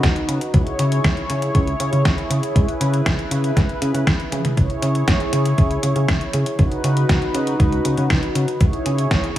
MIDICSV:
0, 0, Header, 1, 4, 480
1, 0, Start_track
1, 0, Key_signature, 4, "minor"
1, 0, Tempo, 504202
1, 514, Time_signature, 4, 2, 24, 8
1, 8935, End_track
2, 0, Start_track
2, 0, Title_t, "Analog synth pad"
2, 0, Program_c, 0, 89
2, 0, Note_on_c, 0, 63, 80
2, 0, Note_on_c, 0, 66, 71
2, 0, Note_on_c, 0, 71, 92
2, 493, Note_off_c, 0, 63, 0
2, 494, Note_off_c, 0, 66, 0
2, 494, Note_off_c, 0, 71, 0
2, 513, Note_on_c, 0, 64, 79
2, 514, Note_on_c, 0, 68, 74
2, 514, Note_on_c, 0, 73, 87
2, 2415, Note_off_c, 0, 73, 0
2, 2436, Note_on_c, 0, 71, 90
2, 4316, Note_off_c, 0, 64, 0
2, 4316, Note_off_c, 0, 68, 0
2, 4336, Note_off_c, 0, 71, 0
2, 4355, Note_on_c, 0, 64, 78
2, 4355, Note_on_c, 0, 68, 75
2, 4356, Note_on_c, 0, 73, 90
2, 6255, Note_off_c, 0, 68, 0
2, 6256, Note_off_c, 0, 64, 0
2, 6256, Note_off_c, 0, 73, 0
2, 6273, Note_on_c, 0, 66, 74
2, 6274, Note_on_c, 0, 63, 82
2, 6275, Note_on_c, 0, 71, 86
2, 8174, Note_off_c, 0, 66, 0
2, 8175, Note_off_c, 0, 63, 0
2, 8175, Note_off_c, 0, 71, 0
2, 8190, Note_on_c, 0, 68, 71
2, 8191, Note_on_c, 0, 64, 81
2, 8192, Note_on_c, 0, 73, 87
2, 8935, Note_off_c, 0, 64, 0
2, 8935, Note_off_c, 0, 68, 0
2, 8935, Note_off_c, 0, 73, 0
2, 8935, End_track
3, 0, Start_track
3, 0, Title_t, "Analog synth bass"
3, 0, Program_c, 1, 38
3, 33, Note_on_c, 1, 37, 88
3, 131, Note_off_c, 1, 37, 0
3, 272, Note_on_c, 1, 49, 100
3, 371, Note_off_c, 1, 49, 0
3, 512, Note_on_c, 1, 37, 103
3, 611, Note_off_c, 1, 37, 0
3, 752, Note_on_c, 1, 49, 99
3, 948, Note_off_c, 1, 49, 0
3, 993, Note_on_c, 1, 37, 96
3, 1091, Note_off_c, 1, 37, 0
3, 1232, Note_on_c, 1, 49, 100
3, 1428, Note_off_c, 1, 49, 0
3, 1474, Note_on_c, 1, 37, 101
3, 1669, Note_off_c, 1, 37, 0
3, 1714, Note_on_c, 1, 49, 86
3, 1812, Note_off_c, 1, 49, 0
3, 1834, Note_on_c, 1, 49, 96
3, 1932, Note_off_c, 1, 49, 0
3, 1953, Note_on_c, 1, 37, 91
3, 2051, Note_off_c, 1, 37, 0
3, 2192, Note_on_c, 1, 49, 102
3, 2291, Note_off_c, 1, 49, 0
3, 2433, Note_on_c, 1, 37, 96
3, 2531, Note_off_c, 1, 37, 0
3, 2673, Note_on_c, 1, 49, 106
3, 2869, Note_off_c, 1, 49, 0
3, 2914, Note_on_c, 1, 37, 94
3, 3012, Note_off_c, 1, 37, 0
3, 3151, Note_on_c, 1, 49, 101
3, 3348, Note_off_c, 1, 49, 0
3, 3395, Note_on_c, 1, 37, 98
3, 3492, Note_off_c, 1, 37, 0
3, 3633, Note_on_c, 1, 49, 101
3, 3731, Note_off_c, 1, 49, 0
3, 3752, Note_on_c, 1, 49, 90
3, 3851, Note_off_c, 1, 49, 0
3, 3874, Note_on_c, 1, 37, 74
3, 3972, Note_off_c, 1, 37, 0
3, 4113, Note_on_c, 1, 49, 99
3, 4211, Note_off_c, 1, 49, 0
3, 4355, Note_on_c, 1, 37, 95
3, 4452, Note_off_c, 1, 37, 0
3, 4591, Note_on_c, 1, 49, 103
3, 4788, Note_off_c, 1, 49, 0
3, 4833, Note_on_c, 1, 37, 96
3, 4931, Note_off_c, 1, 37, 0
3, 5071, Note_on_c, 1, 49, 98
3, 5268, Note_off_c, 1, 49, 0
3, 5313, Note_on_c, 1, 37, 104
3, 5509, Note_off_c, 1, 37, 0
3, 5552, Note_on_c, 1, 49, 87
3, 5651, Note_off_c, 1, 49, 0
3, 5671, Note_on_c, 1, 49, 95
3, 5770, Note_off_c, 1, 49, 0
3, 5792, Note_on_c, 1, 37, 93
3, 5891, Note_off_c, 1, 37, 0
3, 6032, Note_on_c, 1, 49, 104
3, 6131, Note_off_c, 1, 49, 0
3, 6272, Note_on_c, 1, 37, 101
3, 6371, Note_off_c, 1, 37, 0
3, 6511, Note_on_c, 1, 49, 107
3, 6708, Note_off_c, 1, 49, 0
3, 6752, Note_on_c, 1, 37, 97
3, 6851, Note_off_c, 1, 37, 0
3, 6991, Note_on_c, 1, 49, 98
3, 7188, Note_off_c, 1, 49, 0
3, 7232, Note_on_c, 1, 37, 98
3, 7428, Note_off_c, 1, 37, 0
3, 7473, Note_on_c, 1, 49, 83
3, 7571, Note_off_c, 1, 49, 0
3, 7593, Note_on_c, 1, 49, 97
3, 7691, Note_off_c, 1, 49, 0
3, 7712, Note_on_c, 1, 37, 91
3, 7811, Note_off_c, 1, 37, 0
3, 7951, Note_on_c, 1, 49, 101
3, 8050, Note_off_c, 1, 49, 0
3, 8192, Note_on_c, 1, 37, 102
3, 8291, Note_off_c, 1, 37, 0
3, 8433, Note_on_c, 1, 49, 103
3, 8628, Note_off_c, 1, 49, 0
3, 8673, Note_on_c, 1, 37, 102
3, 8771, Note_off_c, 1, 37, 0
3, 8935, End_track
4, 0, Start_track
4, 0, Title_t, "Drums"
4, 32, Note_on_c, 9, 38, 112
4, 32, Note_on_c, 9, 42, 48
4, 33, Note_on_c, 9, 36, 113
4, 127, Note_off_c, 9, 38, 0
4, 127, Note_off_c, 9, 42, 0
4, 129, Note_off_c, 9, 36, 0
4, 153, Note_on_c, 9, 42, 26
4, 248, Note_off_c, 9, 42, 0
4, 273, Note_on_c, 9, 42, 92
4, 368, Note_off_c, 9, 42, 0
4, 393, Note_on_c, 9, 42, 52
4, 489, Note_off_c, 9, 42, 0
4, 512, Note_on_c, 9, 42, 51
4, 513, Note_on_c, 9, 36, 115
4, 608, Note_off_c, 9, 42, 0
4, 609, Note_off_c, 9, 36, 0
4, 634, Note_on_c, 9, 42, 27
4, 729, Note_off_c, 9, 42, 0
4, 753, Note_on_c, 9, 42, 97
4, 848, Note_off_c, 9, 42, 0
4, 875, Note_on_c, 9, 42, 52
4, 970, Note_off_c, 9, 42, 0
4, 993, Note_on_c, 9, 36, 113
4, 995, Note_on_c, 9, 38, 117
4, 995, Note_on_c, 9, 42, 58
4, 1088, Note_off_c, 9, 36, 0
4, 1090, Note_off_c, 9, 38, 0
4, 1090, Note_off_c, 9, 42, 0
4, 1115, Note_on_c, 9, 42, 28
4, 1210, Note_off_c, 9, 42, 0
4, 1235, Note_on_c, 9, 42, 97
4, 1330, Note_off_c, 9, 42, 0
4, 1354, Note_on_c, 9, 42, 55
4, 1449, Note_off_c, 9, 42, 0
4, 1473, Note_on_c, 9, 36, 117
4, 1474, Note_on_c, 9, 42, 53
4, 1569, Note_off_c, 9, 36, 0
4, 1569, Note_off_c, 9, 42, 0
4, 1594, Note_on_c, 9, 42, 27
4, 1689, Note_off_c, 9, 42, 0
4, 1713, Note_on_c, 9, 42, 96
4, 1808, Note_off_c, 9, 42, 0
4, 1834, Note_on_c, 9, 42, 56
4, 1930, Note_off_c, 9, 42, 0
4, 1954, Note_on_c, 9, 36, 112
4, 1955, Note_on_c, 9, 38, 106
4, 1955, Note_on_c, 9, 42, 53
4, 2049, Note_off_c, 9, 36, 0
4, 2050, Note_off_c, 9, 38, 0
4, 2050, Note_off_c, 9, 42, 0
4, 2076, Note_on_c, 9, 42, 26
4, 2171, Note_off_c, 9, 42, 0
4, 2195, Note_on_c, 9, 42, 97
4, 2290, Note_off_c, 9, 42, 0
4, 2315, Note_on_c, 9, 42, 55
4, 2410, Note_off_c, 9, 42, 0
4, 2434, Note_on_c, 9, 36, 118
4, 2435, Note_on_c, 9, 42, 53
4, 2529, Note_off_c, 9, 36, 0
4, 2531, Note_off_c, 9, 42, 0
4, 2556, Note_on_c, 9, 42, 28
4, 2651, Note_off_c, 9, 42, 0
4, 2674, Note_on_c, 9, 42, 96
4, 2769, Note_off_c, 9, 42, 0
4, 2795, Note_on_c, 9, 42, 55
4, 2890, Note_off_c, 9, 42, 0
4, 2914, Note_on_c, 9, 36, 113
4, 2914, Note_on_c, 9, 38, 116
4, 2914, Note_on_c, 9, 42, 57
4, 3009, Note_off_c, 9, 36, 0
4, 3009, Note_off_c, 9, 38, 0
4, 3009, Note_off_c, 9, 42, 0
4, 3036, Note_on_c, 9, 42, 28
4, 3131, Note_off_c, 9, 42, 0
4, 3154, Note_on_c, 9, 42, 102
4, 3249, Note_off_c, 9, 42, 0
4, 3275, Note_on_c, 9, 42, 55
4, 3370, Note_off_c, 9, 42, 0
4, 3395, Note_on_c, 9, 36, 114
4, 3397, Note_on_c, 9, 38, 59
4, 3397, Note_on_c, 9, 42, 55
4, 3490, Note_off_c, 9, 36, 0
4, 3492, Note_off_c, 9, 38, 0
4, 3492, Note_off_c, 9, 42, 0
4, 3516, Note_on_c, 9, 42, 26
4, 3611, Note_off_c, 9, 42, 0
4, 3635, Note_on_c, 9, 42, 96
4, 3731, Note_off_c, 9, 42, 0
4, 3756, Note_on_c, 9, 42, 56
4, 3851, Note_off_c, 9, 42, 0
4, 3875, Note_on_c, 9, 36, 112
4, 3876, Note_on_c, 9, 38, 110
4, 3876, Note_on_c, 9, 42, 54
4, 3970, Note_off_c, 9, 36, 0
4, 3971, Note_off_c, 9, 38, 0
4, 3971, Note_off_c, 9, 42, 0
4, 3996, Note_on_c, 9, 42, 26
4, 4091, Note_off_c, 9, 42, 0
4, 4115, Note_on_c, 9, 42, 99
4, 4115, Note_on_c, 9, 48, 63
4, 4210, Note_off_c, 9, 42, 0
4, 4210, Note_off_c, 9, 48, 0
4, 4234, Note_on_c, 9, 42, 59
4, 4234, Note_on_c, 9, 47, 76
4, 4329, Note_off_c, 9, 42, 0
4, 4329, Note_off_c, 9, 47, 0
4, 4354, Note_on_c, 9, 36, 113
4, 4354, Note_on_c, 9, 42, 54
4, 4449, Note_off_c, 9, 42, 0
4, 4450, Note_off_c, 9, 36, 0
4, 4473, Note_on_c, 9, 42, 27
4, 4568, Note_off_c, 9, 42, 0
4, 4593, Note_on_c, 9, 42, 97
4, 4688, Note_off_c, 9, 42, 0
4, 4713, Note_on_c, 9, 42, 55
4, 4808, Note_off_c, 9, 42, 0
4, 4833, Note_on_c, 9, 38, 115
4, 4833, Note_on_c, 9, 42, 55
4, 4834, Note_on_c, 9, 36, 121
4, 4928, Note_off_c, 9, 38, 0
4, 4928, Note_off_c, 9, 42, 0
4, 4929, Note_off_c, 9, 36, 0
4, 4953, Note_on_c, 9, 42, 26
4, 5049, Note_off_c, 9, 42, 0
4, 5073, Note_on_c, 9, 42, 96
4, 5168, Note_off_c, 9, 42, 0
4, 5193, Note_on_c, 9, 42, 58
4, 5288, Note_off_c, 9, 42, 0
4, 5312, Note_on_c, 9, 42, 55
4, 5313, Note_on_c, 9, 36, 124
4, 5407, Note_off_c, 9, 42, 0
4, 5409, Note_off_c, 9, 36, 0
4, 5432, Note_on_c, 9, 42, 26
4, 5528, Note_off_c, 9, 42, 0
4, 5551, Note_on_c, 9, 42, 96
4, 5646, Note_off_c, 9, 42, 0
4, 5672, Note_on_c, 9, 42, 55
4, 5767, Note_off_c, 9, 42, 0
4, 5793, Note_on_c, 9, 36, 116
4, 5793, Note_on_c, 9, 38, 110
4, 5793, Note_on_c, 9, 42, 53
4, 5888, Note_off_c, 9, 36, 0
4, 5888, Note_off_c, 9, 38, 0
4, 5888, Note_off_c, 9, 42, 0
4, 5913, Note_on_c, 9, 42, 28
4, 6008, Note_off_c, 9, 42, 0
4, 6031, Note_on_c, 9, 42, 101
4, 6126, Note_off_c, 9, 42, 0
4, 6152, Note_on_c, 9, 42, 59
4, 6248, Note_off_c, 9, 42, 0
4, 6272, Note_on_c, 9, 42, 50
4, 6273, Note_on_c, 9, 36, 117
4, 6367, Note_off_c, 9, 42, 0
4, 6368, Note_off_c, 9, 36, 0
4, 6393, Note_on_c, 9, 42, 29
4, 6488, Note_off_c, 9, 42, 0
4, 6512, Note_on_c, 9, 42, 95
4, 6608, Note_off_c, 9, 42, 0
4, 6633, Note_on_c, 9, 42, 53
4, 6728, Note_off_c, 9, 42, 0
4, 6753, Note_on_c, 9, 36, 121
4, 6753, Note_on_c, 9, 38, 124
4, 6753, Note_on_c, 9, 42, 56
4, 6848, Note_off_c, 9, 36, 0
4, 6848, Note_off_c, 9, 38, 0
4, 6848, Note_off_c, 9, 42, 0
4, 6873, Note_on_c, 9, 42, 27
4, 6969, Note_off_c, 9, 42, 0
4, 6993, Note_on_c, 9, 42, 97
4, 7088, Note_off_c, 9, 42, 0
4, 7112, Note_on_c, 9, 42, 56
4, 7208, Note_off_c, 9, 42, 0
4, 7233, Note_on_c, 9, 36, 127
4, 7233, Note_on_c, 9, 42, 53
4, 7328, Note_off_c, 9, 36, 0
4, 7329, Note_off_c, 9, 42, 0
4, 7354, Note_on_c, 9, 42, 26
4, 7449, Note_off_c, 9, 42, 0
4, 7473, Note_on_c, 9, 42, 92
4, 7568, Note_off_c, 9, 42, 0
4, 7592, Note_on_c, 9, 42, 54
4, 7687, Note_off_c, 9, 42, 0
4, 7713, Note_on_c, 9, 36, 125
4, 7713, Note_on_c, 9, 38, 119
4, 7713, Note_on_c, 9, 42, 53
4, 7808, Note_off_c, 9, 36, 0
4, 7808, Note_off_c, 9, 38, 0
4, 7808, Note_off_c, 9, 42, 0
4, 7833, Note_on_c, 9, 42, 27
4, 7928, Note_off_c, 9, 42, 0
4, 7953, Note_on_c, 9, 42, 98
4, 8049, Note_off_c, 9, 42, 0
4, 8073, Note_on_c, 9, 42, 56
4, 8168, Note_off_c, 9, 42, 0
4, 8193, Note_on_c, 9, 36, 126
4, 8193, Note_on_c, 9, 42, 52
4, 8288, Note_off_c, 9, 36, 0
4, 8288, Note_off_c, 9, 42, 0
4, 8313, Note_on_c, 9, 42, 27
4, 8408, Note_off_c, 9, 42, 0
4, 8433, Note_on_c, 9, 42, 88
4, 8528, Note_off_c, 9, 42, 0
4, 8553, Note_on_c, 9, 42, 52
4, 8648, Note_off_c, 9, 42, 0
4, 8673, Note_on_c, 9, 36, 124
4, 8673, Note_on_c, 9, 38, 127
4, 8673, Note_on_c, 9, 42, 52
4, 8768, Note_off_c, 9, 36, 0
4, 8768, Note_off_c, 9, 38, 0
4, 8768, Note_off_c, 9, 42, 0
4, 8794, Note_on_c, 9, 42, 26
4, 8889, Note_off_c, 9, 42, 0
4, 8935, End_track
0, 0, End_of_file